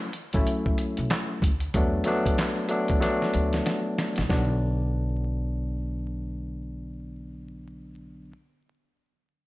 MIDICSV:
0, 0, Header, 1, 4, 480
1, 0, Start_track
1, 0, Key_signature, 2, "minor"
1, 0, Tempo, 638298
1, 1310, Time_signature, 4, 2, 24, 8
1, 7118, End_track
2, 0, Start_track
2, 0, Title_t, "Tine electric piano"
2, 0, Program_c, 0, 4
2, 252, Note_on_c, 0, 54, 86
2, 257, Note_on_c, 0, 57, 93
2, 263, Note_on_c, 0, 61, 84
2, 268, Note_on_c, 0, 64, 105
2, 1121, Note_off_c, 0, 54, 0
2, 1123, Note_off_c, 0, 57, 0
2, 1126, Note_off_c, 0, 61, 0
2, 1128, Note_off_c, 0, 64, 0
2, 1314, Note_on_c, 0, 54, 97
2, 1319, Note_on_c, 0, 57, 85
2, 1324, Note_on_c, 0, 59, 91
2, 1330, Note_on_c, 0, 62, 94
2, 1535, Note_off_c, 0, 54, 0
2, 1539, Note_off_c, 0, 57, 0
2, 1542, Note_off_c, 0, 59, 0
2, 1544, Note_on_c, 0, 54, 89
2, 1545, Note_off_c, 0, 62, 0
2, 1549, Note_on_c, 0, 57, 87
2, 1555, Note_on_c, 0, 59, 88
2, 1560, Note_on_c, 0, 62, 98
2, 1997, Note_off_c, 0, 54, 0
2, 1999, Note_off_c, 0, 57, 0
2, 2002, Note_off_c, 0, 59, 0
2, 2005, Note_off_c, 0, 62, 0
2, 2020, Note_on_c, 0, 54, 90
2, 2025, Note_on_c, 0, 57, 85
2, 2030, Note_on_c, 0, 59, 88
2, 2035, Note_on_c, 0, 62, 100
2, 2250, Note_off_c, 0, 54, 0
2, 2252, Note_off_c, 0, 57, 0
2, 2255, Note_off_c, 0, 59, 0
2, 2257, Note_off_c, 0, 62, 0
2, 2259, Note_on_c, 0, 54, 96
2, 2264, Note_on_c, 0, 57, 85
2, 2269, Note_on_c, 0, 59, 81
2, 2274, Note_on_c, 0, 62, 101
2, 3164, Note_off_c, 0, 54, 0
2, 3167, Note_off_c, 0, 57, 0
2, 3169, Note_off_c, 0, 59, 0
2, 3172, Note_off_c, 0, 62, 0
2, 3224, Note_on_c, 0, 50, 81
2, 3227, Note_on_c, 0, 54, 77
2, 3229, Note_on_c, 0, 59, 78
2, 3232, Note_on_c, 0, 62, 93
2, 6245, Note_off_c, 0, 50, 0
2, 6246, Note_off_c, 0, 54, 0
2, 6247, Note_off_c, 0, 59, 0
2, 6249, Note_off_c, 0, 62, 0
2, 7118, End_track
3, 0, Start_track
3, 0, Title_t, "Upright bass"
3, 0, Program_c, 1, 32
3, 260, Note_on_c, 1, 33, 86
3, 332, Note_off_c, 1, 33, 0
3, 740, Note_on_c, 1, 35, 89
3, 812, Note_off_c, 1, 35, 0
3, 1072, Note_on_c, 1, 38, 92
3, 1258, Note_off_c, 1, 38, 0
3, 1314, Note_on_c, 1, 40, 108
3, 1499, Note_off_c, 1, 40, 0
3, 2182, Note_on_c, 1, 38, 80
3, 2253, Note_off_c, 1, 38, 0
3, 2516, Note_on_c, 1, 38, 93
3, 2700, Note_off_c, 1, 38, 0
3, 3143, Note_on_c, 1, 33, 86
3, 3213, Note_off_c, 1, 33, 0
3, 3233, Note_on_c, 1, 35, 94
3, 6249, Note_off_c, 1, 35, 0
3, 7118, End_track
4, 0, Start_track
4, 0, Title_t, "Drums"
4, 99, Note_on_c, 9, 42, 77
4, 174, Note_off_c, 9, 42, 0
4, 247, Note_on_c, 9, 42, 54
4, 258, Note_on_c, 9, 36, 106
4, 322, Note_off_c, 9, 42, 0
4, 333, Note_off_c, 9, 36, 0
4, 351, Note_on_c, 9, 42, 85
4, 426, Note_off_c, 9, 42, 0
4, 496, Note_on_c, 9, 36, 89
4, 571, Note_off_c, 9, 36, 0
4, 586, Note_on_c, 9, 42, 70
4, 661, Note_off_c, 9, 42, 0
4, 730, Note_on_c, 9, 42, 46
4, 806, Note_off_c, 9, 42, 0
4, 828, Note_on_c, 9, 42, 84
4, 833, Note_on_c, 9, 38, 118
4, 841, Note_on_c, 9, 39, 97
4, 904, Note_off_c, 9, 42, 0
4, 908, Note_off_c, 9, 38, 0
4, 917, Note_off_c, 9, 39, 0
4, 1069, Note_on_c, 9, 36, 92
4, 1081, Note_on_c, 9, 42, 77
4, 1144, Note_off_c, 9, 36, 0
4, 1156, Note_off_c, 9, 42, 0
4, 1206, Note_on_c, 9, 42, 54
4, 1281, Note_off_c, 9, 42, 0
4, 1308, Note_on_c, 9, 42, 99
4, 1310, Note_on_c, 9, 36, 112
4, 1384, Note_off_c, 9, 42, 0
4, 1385, Note_off_c, 9, 36, 0
4, 1534, Note_on_c, 9, 42, 75
4, 1555, Note_on_c, 9, 38, 39
4, 1609, Note_off_c, 9, 42, 0
4, 1630, Note_off_c, 9, 38, 0
4, 1697, Note_on_c, 9, 36, 86
4, 1702, Note_on_c, 9, 42, 58
4, 1772, Note_off_c, 9, 36, 0
4, 1778, Note_off_c, 9, 42, 0
4, 1791, Note_on_c, 9, 42, 99
4, 1794, Note_on_c, 9, 38, 115
4, 1803, Note_on_c, 9, 39, 98
4, 1866, Note_off_c, 9, 42, 0
4, 1870, Note_off_c, 9, 38, 0
4, 1879, Note_off_c, 9, 39, 0
4, 2020, Note_on_c, 9, 42, 79
4, 2095, Note_off_c, 9, 42, 0
4, 2168, Note_on_c, 9, 42, 52
4, 2178, Note_on_c, 9, 36, 101
4, 2243, Note_off_c, 9, 42, 0
4, 2254, Note_off_c, 9, 36, 0
4, 2273, Note_on_c, 9, 42, 84
4, 2276, Note_on_c, 9, 38, 55
4, 2348, Note_off_c, 9, 42, 0
4, 2351, Note_off_c, 9, 38, 0
4, 2423, Note_on_c, 9, 38, 53
4, 2498, Note_off_c, 9, 38, 0
4, 2508, Note_on_c, 9, 42, 71
4, 2583, Note_off_c, 9, 42, 0
4, 2653, Note_on_c, 9, 42, 43
4, 2662, Note_on_c, 9, 38, 61
4, 2728, Note_off_c, 9, 42, 0
4, 2737, Note_off_c, 9, 38, 0
4, 2751, Note_on_c, 9, 42, 84
4, 2756, Note_on_c, 9, 38, 85
4, 2826, Note_off_c, 9, 42, 0
4, 2831, Note_off_c, 9, 38, 0
4, 2996, Note_on_c, 9, 38, 94
4, 3002, Note_on_c, 9, 42, 73
4, 3071, Note_off_c, 9, 38, 0
4, 3077, Note_off_c, 9, 42, 0
4, 3127, Note_on_c, 9, 42, 55
4, 3142, Note_on_c, 9, 38, 86
4, 3202, Note_off_c, 9, 42, 0
4, 3217, Note_off_c, 9, 38, 0
4, 3230, Note_on_c, 9, 36, 102
4, 3235, Note_on_c, 9, 38, 83
4, 3305, Note_off_c, 9, 36, 0
4, 3310, Note_off_c, 9, 38, 0
4, 7118, End_track
0, 0, End_of_file